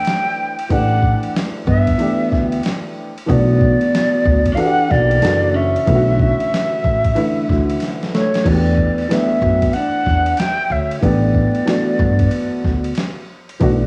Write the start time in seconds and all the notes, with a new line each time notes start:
Already playing: E3 A3 D4 E4 G5
0.05 snare, hi-hat pedal, ride
0.59 ride
0.69 A1 E3 A3 D4 G4 F#5, kick, ride
1.02 kick
1.23 ride
1.36 snare, hi-hat pedal, ride
1.67 G2 B3 E5, kick
1.87 kick, ride
1.98 E3 A3 D4 G4, ride
2.32 D2, kick, snare
2.52 ride
2.63 snare, hi-hat pedal, ride
3.18 ride
3.26 B1 E3 A3 B3 D4 F#4 D5, kick, ride
3.61 kick
3.81 ride
3.95 snare, hi-hat pedal, ride
4.25 D2, kick
4.46 kick, ride
4.52 E3 C#4 F5
4.56 D4 F#4 A4 F#5, ride
4.66 G4
4.88 B1 A#3 D5, kick, snare
5.11 ride
5.21 F#1 E3 D4 F#4 A4, snare, hi-hat pedal, ride
5.54 C#4 E5
5.76 ride
5.85 B1 D3 E3 A3 E4, kick, ride
5.95 F#4
6.19 kick
6.40 ride
6.54 snare, hi-hat pedal, ride
6.84 A2, kick
7.04 kick, ride
7.15 D3 E3 A3 E4, ride
7.49 D2, kick, snare
7.69 ride
7.80 snare, hi-hat pedal, ride
8.03 snare
8.15 A3 C#5, snare
8.34 snare, ride
8.44 E2 E3 A3 B3 D4 F#4 D5, kick, crash, ride
8.54 G4
8.77 kick
8.98 ride
9.09 E3 A3 B3 D4 G4 E5, snare, hi-hat pedal, ride
9.42 F#2, kick
9.62 kick, ride
9.73 D4 F#5, ride
10.06 E2, kick, snare
10.26 ride
10.37 E4 G5, snare, hi-hat pedal, ride
10.70 D2 C#4 E5
10.92 ride
11.01 A1 E3 A3 B3 D4 G4 D5, kick, ride
11.35 kick
11.55 ride
11.65 E3 A3 D4 F#4, snare, hi-hat pedal, ride
11.99 G2, kick
12.19 kick, ride
12.31 ride
12.64 D2, kick, snare
12.84 ride
12.95 snare, hi-hat pedal, ride
13.49 ride
13.60 B1 E3 A3 D4 F#4, kick, ride